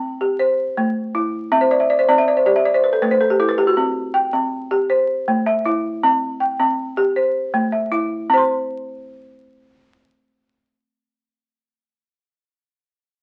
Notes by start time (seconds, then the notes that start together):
Already playing: C4 G5
0.21 G4
0.39 C5
0.77 A3
1.15 E4
1.52 C4 E5
1.61 C5
1.71 D5
1.80 E5
1.90 D5
1.99 C5
2.09 C4 D5
2.18 E5
2.28 D5
2.37 C5
2.46 G4 D5
2.56 E5
2.65 D5
2.74 C5
2.84 B4
2.93 A4
3.02 A3 B4
3.11 C5
3.21 A4
3.30 G4
3.40 E4 A4
3.49 B4
3.58 G4
3.67 F#4
3.77 C4
4.14 G5
4.33 C4
4.71 G4
4.90 C5
5.28 A3
5.46 E5
5.66 E4
6.03 C4
6.40 G5
6.59 C4
6.97 G4
7.16 C5
7.54 A3
7.72 E5
7.92 E4
8.30 C4 C5
8.38 C6